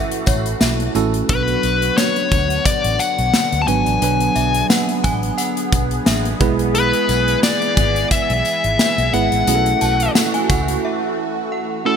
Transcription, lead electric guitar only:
1.30 1.97 B4 medium
1.98 2.65 C#5 medium
2.66 3.01 D5 loud
3.00 3.63 F#5 loud
3.62 3.67 A5 medium
3.67 4.66 G#5 loud
6.75 7.39 B4 medium
7.43 8.07 D5 medium
8.12 9.17 E5 loud
9.13 10.12 F#5 loud
11.86 11.95 A4 medium

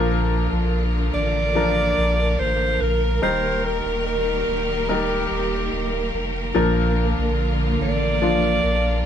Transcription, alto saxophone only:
1.14 2.41 D5 loud
2.39 2.83 C5 medium
2.81 3.22 A#4 medium
3.23 3.66 C5 medium
3.65 4.06 A#4 medium
4.06 4.85 A#4 medium
4.90 6.10 G4 medium
7.82 9.06 D5 loud

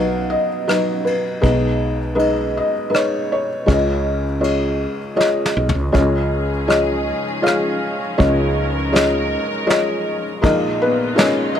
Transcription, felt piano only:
0.00 1.38 B1 soft
0.00 1.38 B2 soft
0.00 0.68 F#3 medium
0.00 0.67 D#4 medium
0.00 0.68 B4 medium
0.00 0.30 D#5 medium
0.00 1.45 F5 medium
0.00 1.45 F#5 medium
0.30 0.66 D#5 medium
0.67 1.24 F#3 medium
0.67 1.24 D#4 medium
0.67 1.03 B4 medium
0.67 1.24 D#5 medium
1.05 1.40 B4 medium
1.41 3.64 B1 medium
1.41 3.64 B2 medium
1.41 1.98 G#3 medium
1.41 1.98 D#4 medium
1.41 1.98 B4 medium
1.41 1.98 D#5 medium
2.15 2.73 G#3 medium
2.15 2.73 D#4 medium
2.15 2.73 B4 medium
2.15 2.56 D#5 medium
2.57 2.88 D#5 medium
2.90 3.47 G#3 medium
2.90 3.48 D#4 medium
2.90 3.48 B4 medium
2.90 3.47 D#5 medium
2.95 3.31 C#5 medium
3.32 3.65 C#5 medium
3.66 5.90 C#2 medium
3.66 5.90 C#3 medium
3.66 4.23 G#3 medium
3.66 4.23 F4 medium
3.66 4.24 C#5 medium
3.66 3.70 D#5 medium
3.71 5.55 G#4 medium
3.71 4.40 D#5 medium
4.41 4.99 G#3 medium
4.41 4.98 F4 medium
4.41 4.99 C#5 medium
4.41 4.99 D#5 medium
5.16 5.74 G#3 medium
5.16 5.74 F4 medium
5.16 5.74 C#5 medium
5.16 5.74 D#5 medium
5.92 8.14 C#2 medium
5.92 8.14 C#3 medium
5.92 6.50 G#3 medium
5.92 6.50 F4 medium
5.92 6.50 C#5 medium
5.92 6.50 D#5 medium
6.68 7.25 G#3 medium
6.68 7.25 F4 medium
6.68 7.25 C#5 medium
6.68 7.25 D#5 medium
7.42 7.99 G#3 medium
7.42 7.99 F4 medium
7.42 7.99 C#5 medium
7.42 8.00 F5 medium
8.18 10.38 C#2 medium
8.18 10.38 C#3 medium
8.18 8.74 G#3 medium
8.18 8.74 F4 medium
8.18 8.74 C#5 medium
8.18 8.74 D#5 medium
8.92 9.49 G#3 medium
8.92 9.49 F4 medium
8.92 9.49 C#5 medium
8.92 9.49 D#5 medium
9.66 10.23 G#3 medium
9.66 10.23 F4 medium
9.66 10.23 C#5 medium
9.66 10.23 D#5 medium
10.42 11.60 A#1 medium
10.42 11.60 A#2 medium
10.42 10.98 G#3 medium
10.42 10.79 A#3 medium
10.42 10.44 D#4 medium
10.42 10.79 D#4 medium
10.42 10.44 F4 medium
10.42 10.98 A#4 medium
10.42 10.98 D#5 medium
10.46 10.79 F4 medium
10.82 11.16 B3 medium
10.82 11.20 B4 loud
11.15 11.60 G#3 medium
11.15 11.55 D#4 medium
11.15 11.60 F4 medium
11.15 11.60 A#4 medium
11.15 11.56 C#5 loud
11.15 11.54 D#5 medium
11.20 11.53 C#4 medium
11.55 11.60 D#5 loud

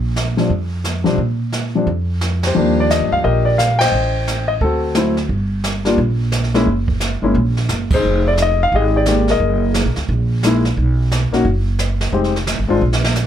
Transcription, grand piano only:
0.37 0.49 F3 medium
0.37 0.49 G3 soft
0.37 0.50 C4 soft
0.37 0.50 D4 medium
1.04 1.17 F3 medium
1.04 1.17 G3 medium
1.04 1.18 C4 medium
1.04 1.18 D4 medium
1.75 1.86 F3 soft
1.75 1.87 G3 soft
1.75 1.87 C4 soft
1.75 1.87 D4 medium
2.47 3.10 G4 medium
2.47 2.81 C5 medium
2.55 3.51 F3 medium
2.55 3.51 G3 medium
2.55 3.52 A#3 medium
2.55 3.52 D4 medium
2.80 2.91 D5 medium
2.91 3.13 D#5 medium
3.12 3.17 F5 loud
3.24 3.89 G4 medium
3.24 3.89 A#4 medium
3.24 3.47 D#5 medium
3.45 3.59 D5 medium
3.58 3.79 F5 medium
3.79 4.45 C5 medium
3.79 4.45 D#5 medium
3.79 4.44 G5 loud
4.48 4.53 D#5 medium
4.61 4.94 C4 medium
4.61 5.27 F#4 medium
4.61 4.93 A4 medium
4.95 5.15 F#3 medium
4.95 5.15 A3 medium
4.95 5.15 C4 medium
4.95 5.16 E4 medium
5.85 5.97 G3 medium
5.85 5.97 A#3 medium
5.85 5.97 D4 medium
5.85 5.98 F4 medium
6.54 6.66 G#3 medium
6.54 6.66 A#3 medium
6.54 6.66 C#4 medium
6.54 6.66 E4 medium
7.23 7.34 G#3 medium
7.23 7.34 A#3 medium
7.23 7.35 C#4 medium
7.23 7.35 E4 medium
7.94 8.58 D#4 medium
7.94 8.57 G#4 medium
7.94 8.25 C5 medium
8.28 8.33 D5 medium
8.42 8.61 D#5 loud
8.63 8.74 F5 loud
8.75 8.95 G4 medium
8.75 8.95 G#4 medium
8.75 8.96 D#5 medium
8.96 9.07 G4 medium
8.96 9.29 G#4 medium
8.96 9.31 D5 medium
9.07 9.26 G#3 soft
9.07 9.26 A#3 soft
9.07 9.27 D#4 soft
9.07 9.27 G4 medium
9.30 9.94 G#4 medium
9.30 9.93 A#4 medium
9.30 9.73 D#5 medium
10.44 10.63 G#3 medium
10.44 10.64 A#3 medium
10.44 10.64 D#4 medium
10.44 10.64 E4 medium
11.33 11.44 A#3 medium
11.33 11.44 C#4 medium
11.33 11.45 D#4 medium
11.33 11.45 F#4 medium
12.12 12.33 G#3 medium
12.12 12.33 C4 medium
12.12 12.33 D#4 medium
12.12 12.34 G4 medium
12.68 12.80 G#3 medium
12.68 12.80 C4 medium
12.68 12.81 D4 medium
12.68 12.81 F4 medium

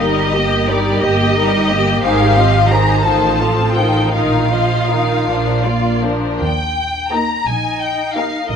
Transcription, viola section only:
0.00 0.32 G3 soft
0.00 0.32 D#4 soft
0.35 0.69 A#3 soft
0.35 0.69 G4 soft
0.69 1.02 G3 soft
0.69 1.02 D#4 soft
1.02 1.35 A#3 soft
1.02 1.35 G4 soft
1.36 1.67 G3 soft
1.36 1.67 D#4 soft
1.70 2.03 A#3 soft
1.70 2.03 G4 soft
2.03 2.34 D#3 soft
2.03 2.34 D#4 soft
2.37 2.71 F3 soft
2.37 2.71 C4 soft
2.71 3.05 D#3 soft
2.71 3.05 D#4 soft
3.06 3.38 D#3 soft
3.06 3.38 D#4 soft
3.41 3.77 F3 soft
3.41 3.77 C4 soft
3.77 4.13 D#3 soft
3.77 4.12 D#4 soft
4.13 4.49 D#3 soft
4.13 4.49 D#4 soft
4.52 4.90 F3 soft
4.52 4.90 F4 soft
4.90 5.28 D#3 soft
4.90 5.28 D#4 soft
5.28 5.63 F3 soft
5.28 5.63 D4 soft
5.65 6.03 A#3 soft
5.65 6.03 F4 soft
6.04 6.41 F3 soft
6.04 6.41 D4 soft
7.13 7.39 A#3 soft
7.13 7.39 D#4 soft
8.17 8.43 A#3 soft
8.17 8.43 D#4 soft

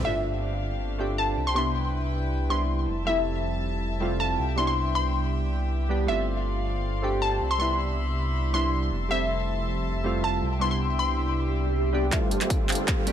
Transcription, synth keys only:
0.03 0.96 A3 medium
0.03 0.97 C4 medium
0.03 0.97 D4 medium
0.07 0.98 F4 medium
0.98 1.35 A3 medium
0.98 1.36 C4 medium
0.98 1.36 D4 medium
0.98 1.36 G4 medium
1.54 2.47 G3 medium
1.54 2.48 B3 medium
1.54 2.48 D4 medium
1.58 2.49 E4 medium
2.49 2.86 G3 medium
2.49 2.87 B3 medium
2.49 2.87 D4 medium
2.49 2.87 E4 medium
3.05 3.98 G3 medium
3.05 3.99 A3 medium
3.05 3.99 C4 medium
3.09 4.00 E4 medium
4.00 4.37 G3 medium
4.00 4.38 A3 medium
4.00 4.38 C4 medium
4.00 4.38 F4 medium
4.56 5.49 G3 medium
4.56 5.50 B3 medium
4.56 5.50 D4 medium
4.56 5.51 E4 medium
5.89 6.06 G3 medium
5.89 6.06 B3 medium
5.89 6.07 D4 medium
5.89 6.07 G4 medium
6.07 7.00 A3 medium
6.07 7.01 C4 medium
6.07 7.01 D4 medium
6.07 7.02 F4 medium
7.02 7.39 A3 medium
7.02 7.40 C4 medium
7.02 7.40 D4 medium
7.02 7.40 G4 medium
7.58 8.51 G3 medium
7.58 8.51 B3 medium
7.58 8.52 D4 medium
7.62 8.53 E4 medium
8.53 8.90 G3 medium
8.53 8.90 B3 medium
8.53 8.91 D4 medium
8.53 8.91 E4 medium
9.09 10.02 G3 medium
9.09 10.02 A3 medium
9.09 10.03 C4 medium
9.13 10.04 E4 medium
10.04 10.41 G3 medium
10.04 10.41 A3 medium
10.04 10.42 C4 medium
10.04 10.42 F4 medium
10.59 11.53 G3 medium
10.59 11.53 B3 medium
10.59 11.54 D4 medium
10.63 11.55 E4 medium
11.93 12.10 G3 medium
11.93 12.10 B3 medium
11.93 12.10 D4 medium
11.93 12.11 G4 medium
12.11 13.04 A3 medium
12.11 13.04 C4 medium
12.11 13.05 D4 medium
12.11 13.06 F4 medium
13.06 13.12 A3 medium
13.06 13.12 C4 medium
13.06 13.12 D4 medium
13.06 13.12 G4 medium

